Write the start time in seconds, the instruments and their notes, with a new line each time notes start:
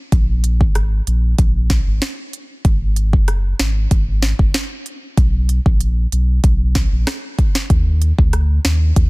0.12 sub bass A#1, kick, closed hi-hat
0.44 closed hi-hat
0.61 sub bass G#1, kick
0.75 cross-stick, closed hi-hat
1.07 sub bass A#1, closed hi-hat
1.38 sub bass A#1, kick, closed hi-hat
1.70 kick, snare, closed hi-hat
1.87 sub bass G#1
2.02 snare, closed hi-hat
2.33 closed hi-hat
2.65 sub bass G#1, kick, closed hi-hat
2.96 closed hi-hat
3.13 sub bass F#1, kick
3.28 cross-stick, closed hi-hat
3.60 sub bass G#1, snare, closed hi-hat
3.91 sub bass G#1, kick, closed hi-hat
4.22 snare, closed hi-hat
4.39 sub bass F#1, kick
4.54 snare, closed hi-hat
4.86 closed hi-hat
5.17 sub bass B1, kick, closed hi-hat
5.49 closed hi-hat
5.66 sub bass A#1, kick
5.80 closed hi-hat
6.12 sub bass B1, closed hi-hat
6.44 sub bass B1, kick, closed hi-hat
6.75 kick, snare, closed hi-hat
6.92 sub bass A#1
7.07 cross-stick, snare, closed hi-hat
7.39 kick, closed hi-hat
7.55 snare
7.70 sub bass D#2, kick, closed hi-hat
8.02 closed hi-hat
8.19 sub bass D2, kick
8.33 cross-stick, closed hi-hat
8.65 sub bass D#2, snare, closed hi-hat
8.96 sub bass D#2, kick, closed hi-hat